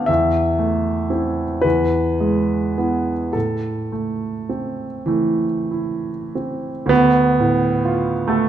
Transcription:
Already playing: B3 D4 F5 A5
0.06 E2 E5
0.59 A3
1.10 C4 E4
1.61 E2 B4
2.20 G#3
2.78 B3 E4
3.33 A2 A4
3.92 A3
4.49 C4
5.06 E3 A3
5.71 E4
6.35 C4
6.86 D2 B3
7.40 A2
7.85 F4
8.28 A3 A4

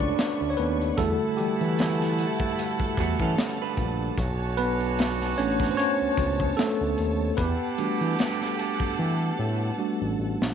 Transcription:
Already playing: C#2 A3 C#4 D4 F#4 A4 B4 C5 C#5 D5 C#6
0.00 kick
0.19 snare, closed hi-hat
0.41 D2
0.50 C#5
0.57 D#2 B3 B4, closed hi-hat
0.81 closed hi-hat
0.97 E2 B2 D3 G3 A3 E4 F#4 A4 F#5 A5, kick, closed hi-hat
1.37 E3 G3 G4, closed hi-hat
1.61 E3, closed hi-hat
1.79 snare, closed hi-hat
2.01 snare
2.19 closed hi-hat
2.40 kick
2.59 closed hi-hat
2.80 kick
2.97 E2 A3 F#4, kick, closed hi-hat
3.20 E3 C#4 A4, kick
3.38 snare, closed hi-hat
3.62 D4 B4
3.77 A#1, kick, closed hi-hat
4.18 B1 C#4 D4 F#4 C#5 A5, kick, closed hi-hat
4.57 B3 B4, closed hi-hat
4.80 closed hi-hat
4.99 snare, closed hi-hat
5.21 snare
5.38 A1 A3 C#4 D4 C#5, closed hi-hat
5.60 kick, snare
5.71 C5
5.77 C#4 C#5, closed hi-hat
6.01 C#2
6.17 C#2, kick, closed hi-hat
6.40 kick
6.57 A3 A4, snare, closed hi-hat
6.81 D2
6.98 D#2, closed hi-hat
7.37 E2 D3 B3 G4 A4 B4 F#5 A5, kick, closed hi-hat
7.78 E3 G3 A3 D4 F#4, closed hi-hat
8.01 E3, closed hi-hat
8.19 snare, closed hi-hat
8.41 snare
8.59 closed hi-hat
8.80 kick
8.99 E3
9.39 A2
9.78 G3 A3 D4 F#4
10.02 A1
10.19 A1
10.41 A#1, snare

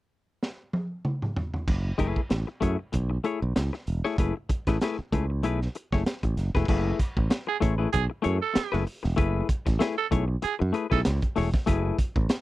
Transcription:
0.43 snare
0.73 high tom
1.05 mid tom
1.22 mid tom
1.36 floor tom
1.54 floor tom
1.68 F#1, kick, crash
1.98 F#1 A3 E4 G#4 B4, kick, closed hi-hat
2.16 kick
2.30 A1, muted clean electric guitar stroke, snare, closed hi-hat
2.47 muted clean electric guitar stroke
2.61 F#2 A3 E4 G#4 C#5, kick, closed hi-hat
2.92 B1, muted clean electric guitar stroke, kick, closed hi-hat
3.10 muted clean electric guitar stroke
3.24 A3 E4 G#4 C#5, closed hi-hat
3.41 B1, muted clean electric guitar stroke
3.56 C#2, muted clean electric guitar stroke, snare, closed hi-hat
3.73 muted clean electric guitar stroke, snare
3.87 E1, closed hi-hat
4.05 A3 E4 G#4 C#5, snare
4.18 F#1 A3 E4 G#4 B4, kick, closed hi-hat
4.36 muted clean electric guitar stroke
4.49 muted clean electric guitar stroke, kick, closed hi-hat
4.67 A1 A3 E4 G#4 B4, kick, snare, closed hi-hat
4.81 A3 E4 G#4 B4, snare, closed hi-hat
4.99 muted fingered electric bass stroke
5.12 C#2 A3 E4 G#4 B4, kick, closed hi-hat
5.30 muted clean electric guitar stroke
5.43 B1 A3 E4 G#4 B4, closed hi-hat
5.62 snare
5.75 muted clean electric guitar stroke, closed hi-hat
5.92 F#1 A3 E4 G#4 C#5, kick, snare
6.06 muted clean electric guitar stroke, snare, closed hi-hat
6.23 A1, muted clean electric guitar stroke, kick, closed hi-hat
6.37 F#1, snare, closed hi-hat
6.55 E1 A3 E4 G#4 B4, kick, snare
6.68 F#1 A3 E4 G#4 B4, kick, crash
7.00 kick, closed hi-hat
7.17 A1, muted clean electric guitar stroke, kick
7.30 muted clean electric guitar stroke, snare, closed hi-hat
7.47 G#4, muted clean electric guitar stroke
7.60 A1 A3 E4 G#4 C#5, kick, closed hi-hat
7.78 A3 E4 G#4 B4
7.93 B1 G#4, kick, closed hi-hat
8.10 muted clean electric guitar stroke
8.22 F#2 A3 E4 G#4 C#5, closed hi-hat
8.42 A4
8.54 muted clean electric guitar stroke, muted fingered electric bass stroke, snare, closed hi-hat
8.72 F#1 A3 E4 G#4 B4, snare
8.86 muted clean electric guitar stroke, open hi-hat
9.03 E1, muted clean electric guitar stroke, snare
9.16 F#1 A3 E4 G#4 B4, kick, closed hi-hat
9.49 kick, closed hi-hat
9.66 A1, muted clean electric guitar stroke, kick, snare, closed hi-hat
9.79 A3 E4 G#4 B4, snare, closed hi-hat
9.98 A4
10.11 B1 A3 E4 G#4 C#5, kick, closed hi-hat
10.28 muted clean electric guitar stroke
10.42 G#4, muted clean electric guitar stroke, muted fingered electric bass stroke, closed hi-hat
10.59 F#2, muted clean electric guitar stroke
10.73 A3 E4 G#4 B4, closed hi-hat
10.90 B1 A3 E4 G#4 A4 B4, kick, snare
11.05 C#2, snare, closed hi-hat
11.22 kick, closed hi-hat
11.36 E1 A3 E4 G#4 C#5, snare, open hi-hat
11.53 muted clean electric guitar stroke, kick, snare
11.66 F#1 A3 E4 G#4 B4, kick, closed hi-hat
11.98 kick, closed hi-hat
12.16 A1, muted clean electric guitar stroke, kick
12.29 muted clean electric guitar stroke, snare, closed hi-hat

